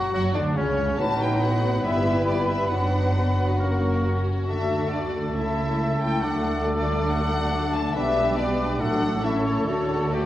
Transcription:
Already playing: F#1 F#2 F#3 F#4 F#5
0.13 F#1 F#2 F#3 F#4 F#5
0.35 D2 D3 D4 D5
0.56 C#2 C#3 C#4 C#5
0.99 A1 A2 F#3 B3 D#4 F#4 B4 A5 B5
1.21 G5
1.43 B3 D#4 F#5
1.85 G1 G2 G3 B3 E4 G4 E5
2.29 D5
2.50 E5
2.72 F#1 F#2 F#3 B3 D4 F#4 F#5
3.17 B3
3.60 A#3 C#4 F#4 A#4 C#6
4.04 C#4
4.48 D2 D3 A3 D4 F#4 A4 E5 A5
4.92 D5
5.37 C#2 C#3 A3 E4 E5
6.02 G5
6.23 D2 D3 F#3 D4 F#5 D6
6.67 D5
7.10 F#5
7.74 A5
7.95 B1 B2 G3 B3 D4 G4 B4 E5 D6
8.37 G3 D4 B4 D5 D6
8.79 A1 A2 F#3 A3 D4 A4 F#5 D6
9.23 A3 C#4 E4 A4 E5 C#6
9.45 C#5
9.67 D2 D3 A3 D4 F#4 A4 C#5 A5
10.11 A3 F#4 G4 D5 A5

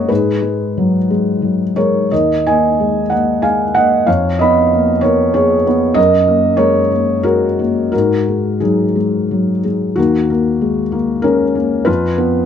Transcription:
Already playing: F#2 G#3 A#3 A#4 C#5 D#5 F#5
0.09 G#2 G#4 B4
0.42 G#3
0.77 F#3
1.10 G#3
1.42 F#3
1.76 G#3 A#4 C#5
2.11 D#2 A#4 D#5
2.47 A#3 D#5 G#5
2.80 G#3
3.10 A#3 D#5 F#5
3.42 G#3 F5 G#5
3.75 A#3 D#5 F#5
4.07 F2 C#5 F5
4.39 B3 D#5 B5
4.72 A#3
5.01 B3 A#4 C#5
5.34 A#3 G#4 C#5
5.67 B3
5.94 F#2 A#4 D#5
6.28 A#3
6.57 G#3 A#4 C#5
6.92 A#3
7.23 G#3 F#4 A#4
7.59 A#3
7.92 G#2 F#4 A#4
8.28 G#3
8.60 F#3 D#4 G#4
8.95 G#3
9.31 F#3
9.64 G#3
9.96 D#2 A#3 F#4
10.30 A#3
10.61 G#3
10.92 A#3
11.22 G#3 C#4 A#4
11.55 A#3
11.85 F2 F4 B4
12.18 B3

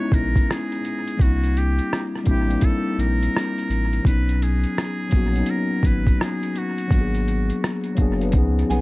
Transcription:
Already playing: G#3 B3 C#4 D#4 E4 C#5
0.12 A#1 A#4, kick, closed hi-hat
0.36 kick, closed hi-hat
0.50 G#4, cross-stick, closed hi-hat
0.72 closed hi-hat
0.85 closed hi-hat
1.08 closed hi-hat
1.17 C2 G3 A#3 C4, kick, closed hi-hat
1.21 D4 E4 F#4
1.44 closed hi-hat
1.57 G4, closed hi-hat
1.79 closed hi-hat
1.93 cross-stick, closed hi-hat
2.15 cross-stick
2.24 A1 G3 A#3 C4, kick, closed hi-hat
2.28 D4 E4 G4
2.47 G3 A#3 C4, closed hi-hat
2.52 D4 D#4
2.60 E4 A4, kick, closed hi-hat
2.98 A#1 A#4, closed hi-hat
3.23 closed hi-hat
3.36 cross-stick, closed hi-hat
3.58 closed hi-hat
3.70 A1, closed hi-hat
3.93 closed hi-hat
4.02 B1 F#3 B3, kick
4.06 C#4 D#4 B4, closed hi-hat
4.29 closed hi-hat
4.42 G#4, closed hi-hat
4.64 closed hi-hat
4.78 cross-stick, closed hi-hat
5.09 A#1 F#3 A#3 B3, kick, closed hi-hat
5.15 C#4 F#4
5.33 F#3 B3, closed hi-hat
5.38 C#4 D#4
5.46 A#4, closed hi-hat
5.83 G#1 B4, kick, closed hi-hat
6.07 kick, closed hi-hat
6.21 G#4, cross-stick, closed hi-hat
6.43 closed hi-hat
6.56 F#4, closed hi-hat
6.78 closed hi-hat
6.88 G#1 F#3 A#3 B3, kick
6.92 D4 F#4, closed hi-hat
7.01 G#4
7.15 closed hi-hat
7.28 closed hi-hat
7.50 closed hi-hat
7.64 cross-stick, closed hi-hat
7.84 closed hi-hat
7.95 F#1 F#3 A#3 B3, kick, closed hi-hat
8.00 D4 G#4
8.18 F#3 A#3 B3, closed hi-hat
8.24 D4 B4
8.31 C#2 F3 B3 C#4, kick, closed hi-hat
8.36 D#4 G#4
8.59 closed hi-hat
8.70 B1 B3 G#4, closed hi-hat

